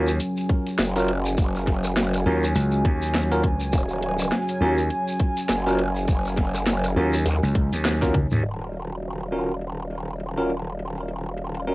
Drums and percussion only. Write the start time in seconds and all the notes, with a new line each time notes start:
0.08 shekere
0.20 closed hi-hat, shekere
0.37 shekere
0.49 kick, cross-stick, closed hi-hat
0.67 closed hi-hat, shekere
0.79 snare, closed hi-hat, shekere
0.96 closed hi-hat, shekere
1.08 closed hi-hat
1.25 shekere
1.37 kick, closed hi-hat, shekere
1.55 shekere
1.67 kick, snare, closed hi-hat
1.84 cross-stick, shekere
1.96 snare, closed hi-hat, shekere
2.14 cross-stick, closed hi-hat, shekere
2.44 cross-stick, shekere
2.55 closed hi-hat, shekere
2.71 shekere
2.85 kick, closed hi-hat
3.02 closed hi-hat, shekere
3.08 closed hi-hat
3.14 snare, closed hi-hat, shekere
3.23 closed hi-hat
3.31 closed hi-hat, shekere
3.44 kick, closed hi-hat
3.60 shekere
3.73 kick, closed hi-hat, shekere
3.89 shekere
4.03 closed hi-hat
4.19 shekere
4.31 snare, closed hi-hat, shekere
4.48 closed hi-hat, shekere
4.78 shekere
4.89 closed hi-hat, shekere
5.08 shekere
5.20 kick, cross-stick, closed hi-hat
5.37 closed hi-hat, shekere
5.49 snare, closed hi-hat, shekere
5.68 shekere
5.79 closed hi-hat
5.96 shekere
6.08 kick, closed hi-hat, shekere
6.25 shekere
6.37 kick, snare, closed hi-hat
6.55 cross-stick, closed hi-hat, shekere
6.67 snare, closed hi-hat, shekere
6.84 cross-stick, closed hi-hat, shekere
7.13 cross-stick, shekere
7.26 closed hi-hat, shekere
7.44 shekere
7.55 kick, closed hi-hat
7.73 closed hi-hat, shekere
7.85 snare, closed hi-hat, shekere
8.02 kick, snare, closed hi-hat, shekere
8.14 kick, closed hi-hat, mid tom
8.31 mid tom, shekere
8.43 closed hi-hat
8.73 closed hi-hat
9.02 closed hi-hat
9.20 closed hi-hat
9.61 closed hi-hat
9.90 closed hi-hat
10.08 closed hi-hat
10.20 closed hi-hat
10.37 closed hi-hat
10.50 closed hi-hat
10.79 closed hi-hat
11.08 closed hi-hat
11.37 closed hi-hat
11.55 closed hi-hat